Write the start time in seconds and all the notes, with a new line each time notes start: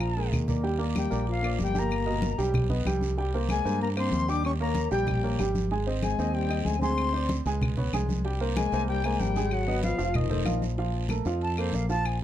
Already playing: A#1 F3 F4 F5
0.00 A#5, long guiro, claves
0.16 G#3 G#4 A#4
0.32 D#2, low conga, short guiro, claves
0.48 A#3 A#4 D5, low conga, short guiro
0.63 G3 G4 G5, high conga, long guiro
0.78 A#3 A#4 D5, high conga
0.96 G3 G5, high conga, short guiro, claves
1.10 A#1 A#3 A#4 D5, high conga, short guiro
1.27 F3 F5, high conga, long guiro
1.42 A#3 A#4 D5, high conga, claves
1.59 G1 G3, high conga, short guiro
1.63 G5
1.74 G3 A#3 G4 G5, high conga, short guiro
1.79 A#5
1.91 high conga, long guiro, claves
2.06 B2 A#4 D#5, high conga
2.22 high conga, short guiro
2.38 B1 G3 G4 G5, high conga, short guiro
2.54 high conga, low conga, long guiro, claves
2.70 B3 B4 D#5, high conga, low conga
2.85 C2 G3 G4 G5, high conga, short guiro, claves
3.01 high conga, short guiro
3.17 G3 G4 G5, high conga, long guiro
3.33 A#3 A#4 C5, high conga
3.49 G#3 G#5, high conga, short guiro, claves
3.64 G2 A#3 A#4 C5, high conga, short guiro
3.80 A#3 A#5, high conga, long guiro
3.96 A#3 C4 A#4 C5 C6, high conga, claves
4.11 D#2, high conga, short guiro
4.28 G3 D4 G4 G5 D6, short guiro
4.43 C#4 C#6, high conga, long guiro, claves
4.60 A#3 A#4 C#5 A#5, high conga
4.75 high conga, short guiro
4.91 A#1 G3 G4 G5, high conga, short guiro
5.07 high conga, low conga, long guiro, claves
5.23 A#3 A#4 C#5, high conga
5.39 G#1 G3 G4 G5, high conga, short guiro, claves
5.55 high conga, short guiro
5.71 G#3 G#4 G#5, high conga, long guiro
5.87 C4 C5 D#5, high conga
6.02 G#3 G#5, high conga, short guiro, claves
6.18 D#2 C4 C5 D#5, high conga, short guiro
6.33 G3 G5, high conga, long guiro
6.49 C4 C5 D#5, high conga, claves
6.63 D2 G#3 G#5, high conga, short guiro
6.79 G#3 C4 G#4 G#5 C6, high conga, short guiro
6.98 long guiro, claves
7.13 C4 C5 D5, high conga
7.29 high conga, short guiro
7.45 C#2 G#3 G#4 G#5, high conga, short guiro
7.61 high conga, low conga, long guiro, claves
7.77 B3 B4 C#5, high conga, low conga
7.93 C2 G#3 G#4 G#5, high conga, short guiro, claves
8.09 high conga, short guiro
8.24 G3 G4 G5, high conga, long guiro
8.40 A#3 A#4 C5, high conga
8.56 G#3 G#5, high conga, short guiro, claves
8.72 C2 A#3 A#4 C5, high conga, short guiro
8.88 G3 G5, high conga, long guiro
9.04 G#3 A#3 A#4 C5 G#5, high conga, claves
9.19 G#1 G3 G5, high conga, short guiro
9.36 G#3 G#4 G#5, high conga, short guiro
9.51 F#3 F#5, high conga, long guiro, claves
9.67 B3 B4 D#5, high conga
9.83 F3 F5, high conga, short guiro
9.98 F1 F3 F4 F5, high conga, short guiro
10.14 D#3 D#5, high conga, low conga, long guiro, claves
10.29 A3 A4 C5, high conga, low conga
10.45 A#1 F3 F4 F5, high conga, short guiro, claves
10.62 high conga, short guiro
10.78 F3 F4 F5, high conga, long guiro
10.93 high conga
11.09 A3 A4 A#4, high conga, short guiro, claves
11.25 F2 F3 F4 F5, high conga, short guiro
11.41 A5, high conga, long guiro
11.57 A#3 A4 A#4 C5, high conga, claves
11.73 A#1 F5, high conga, short guiro
11.89 F3 F4 F5 A5, short guiro
12.04 G#5, high conga, long guiro, claves
12.20 high conga